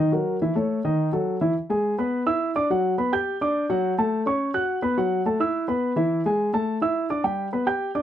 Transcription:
0.12 0.36 F#3 medium
0.12 0.36 F#4 medium
0.12 0.36 A#4 medium
0.42 0.53 E3 medium
0.42 0.53 E4 medium
0.42 0.53 E5 medium
0.55 0.79 A3 medium
0.55 0.79 A4 medium
0.55 0.79 C#5 medium
0.85 1.08 D#3 medium
0.85 1.08 D#4 medium
0.85 1.08 D#5 medium
1.12 1.36 F#3 medium
1.12 1.36 F#4 medium
1.12 1.36 A4 medium
1.41 1.53 E3 medium
1.41 1.53 E4 medium
1.41 1.53 E5 medium
1.70 1.93 G#3 medium
1.70 1.93 G#4 medium
1.70 1.93 G#5 medium
1.98 2.21 B3 medium
1.98 2.22 B4 medium
1.98 2.22 B5 medium
2.26 2.50 E4 medium
2.26 2.50 E5 medium
2.26 2.50 E6 medium
2.56 2.67 D4 medium
2.56 2.67 D5 medium
2.56 2.67 D6 medium
2.70 2.93 F#3 medium
2.70 2.93 F#4 medium
2.70 2.93 F#5 medium
2.98 3.09 B3 medium
2.98 3.10 B4 medium
2.98 3.10 B5 medium
3.13 3.36 G4 medium
3.13 3.36 G5 medium
3.13 3.36 G6 medium
3.41 3.64 D4 medium
3.41 3.64 D5 medium
3.41 3.65 D6 medium
3.70 3.93 F#3 medium
3.70 3.93 F#4 medium
3.70 3.93 F#5 medium
3.98 4.21 A3 medium
3.98 4.21 A4 medium
3.98 4.21 A5 medium
4.26 4.49 C#4 medium
4.26 4.50 C#5 medium
4.26 4.50 C#6 medium
4.54 4.77 F#4 medium
4.54 4.77 F#5 medium
4.54 4.78 F#6 medium
4.82 4.94 B3 medium
4.82 4.94 B4 medium
4.82 4.94 B5 medium
4.97 5.20 F#3 medium
4.97 5.21 F#4 medium
4.97 5.21 F#5 medium
5.26 5.37 A3 medium
5.26 5.37 A4 medium
5.26 5.37 A5 medium
5.40 5.63 E4 medium
5.40 5.63 E5 medium
5.40 5.63 E6 medium
5.68 5.91 B3 medium
5.68 5.91 B4 medium
5.68 5.92 B5 medium
5.96 6.19 E3 medium
5.96 6.20 E4 medium
5.96 6.20 E5 medium
6.26 6.48 G#3 medium
6.26 6.49 G#4 medium
6.26 6.49 G#5 medium
6.53 6.76 A3 medium
6.53 6.77 A4 medium
6.53 6.77 A5 medium
6.81 7.05 E4 medium
6.81 7.05 E5 medium
6.81 7.05 E6 medium
7.10 7.21 D4 medium
7.10 7.22 D5 medium
7.10 7.22 D6 medium
7.24 7.47 G3 medium
7.24 7.47 G4 medium
7.24 7.47 G5 medium
7.53 7.64 B3 medium
7.53 7.64 B4 medium
7.53 7.64 B5 medium
7.66 7.90 G4 medium
7.66 7.90 G5 medium
7.66 7.90 G6 medium
7.95 8.02 D4 medium
7.95 8.02 D5 medium
7.95 8.02 D6 medium

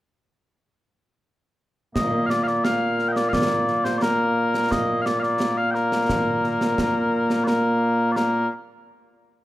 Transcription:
1.95 8.48 A#2 medium
1.95 8.48 A#3 medium
1.95 2.26 D#5 loud
1.95 concert bass drum medium
1.95 snare medium
2.26 2.43 D5 medium
2.26 2.30 F5 medium
2.26 snare medium
2.43 2.64 D5 medium
2.43 2.47 F5 medium
2.43 snare soft
2.64 3.08 F5 loud
2.64 snare medium
2.99 snare soft
3.08 3.12 G5 medium
3.12 3.29 D5 medium
3.12 3.16 D#5 medium
3.12 snare medium
3.29 3.33 F5 loud
3.33 3.84 D5 loud
3.33 concert bass drum medium
3.33 snare medium
3.68 snare soft
3.84 3.98 C5 medium
3.84 snare medium
3.98 4.02 D5 medium
4.02 4.71 A#4 medium
4.02 snare medium
4.54 snare medium
4.71 5.02 D#5 medium
4.71 concert bass drum medium
4.71 snare medium
5.02 5.20 D5 medium
5.02 5.06 F5 medium
5.06 snare medium
5.20 5.57 D5 medium
5.20 5.23 F5 medium
5.20 snare soft
5.40 snare medium
5.57 5.71 F5 medium
5.71 7.44 A#4 medium
5.71 5.74 G5 medium
5.75 snare soft
5.92 snare medium
6.09 concert bass drum medium
6.09 snare medium
6.44 snare soft
6.61 snare medium
6.78 concert bass drum medium
6.78 snare medium
7.30 snare medium
7.44 8.12 A#4 medium
7.44 7.47 D5 medium
7.44 snare medium
8.12 8.16 D5 medium
8.16 8.48 A#4 medium
8.16 snare medium

